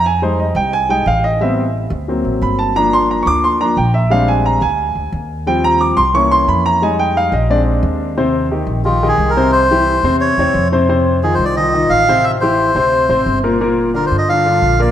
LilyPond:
<<
  \new Staff \with { instrumentName = "Melodica" } { \time 4/4 \key ees \major \tempo 4 = 177 r1 | r1 | r1 | r1 |
r1 | r1 | r2 \tuplet 3/2 { f'4 aes'8~ aes'8 bes'4 } | c''2 des''4. r8 |
r4 \tuplet 3/2 { aes'8 c''8 d''8 } ees''4 f''4 | e''8 c''2. r8 | r4 \tuplet 3/2 { bes'8 c''8 ees''8 } f''4. d''8 | }
  \new Staff \with { instrumentName = "Grand piano" } { \time 4/4 \key ees \major aes''8 c''8 ees''8 g''8 aes''8 g''8 f''8 ees''8 | e''4 r2 ces'''8 a''8 | bes''8 c'''8 bes''8 <des''' d'''>8 c'''8 bes''8 g''8 fes''8 | f''8 aes''8 bes''8 aes''4. r4 |
g''8 bes''8 d'''8 c'''8 des'''8 c'''8 ces'''8 bes''8 | aes''8 g''8 f''8 ees''8 d''8 r4. | <c c' c''>4 <ees ees' g'>4 <ees ees' g'>8 <ees ees' g'>4 <c c' c''>8~ | <c c' c''>8 <e e' g'>4 <c c' c''>4 <c c' des''>4 <c c' c''>8 |
<c c' c''>4 <ees ees' f'>4 <ees ees' f'>8 <ees ees' f'>4 <c c' c''>8~ | <c c' c''>8 <e e' g'>4 <c c' c''>4 <c c' c''>4 <bes, bes bes'>8 | <bes, bes bes'>4 <d d' f'>4 <d d' f'>8 <d d' f'>4 <bes, bes bes'>8 | }
  \new Staff \with { instrumentName = "Grand piano" } { \time 4/4 \key ees \major r8 <g aes ees'>8 r4. <g aes ees'>8 r4 | <g ces' c'>8 r4. <fis bes c'>2 | <f bes d'>2~ <f bes d'>8 <f bes d'>8 r4 | <g aes c' d'>4. r2 r8 |
<f g c'>4. r8 <e bes des'>2 | <g aes ees'>4. r8 <aes c' d'>2 | r1 | r1 |
r1 | r1 | r1 | }
  \new Staff \with { instrumentName = "Upright bass" } { \clef bass \time 4/4 \key ees \major f,4. c,4. a,,4~ | a,,4. d,4 a,,8 g,,4~ | g,,4. d,4. bes,,4~ | bes,,4. d,4 d,8 ees,4~ |
ees,4. c,4. f,4~ | f,4. bes,,4. ees,4~ | ees,4. bes,,4. c,4~ | c,4. e,4 e,8 f,4~ |
f,4. c,4. a,,4~ | a,,4. d,4 a,,8 g,,4~ | g,,4. g,4. bes,,4 | }
>>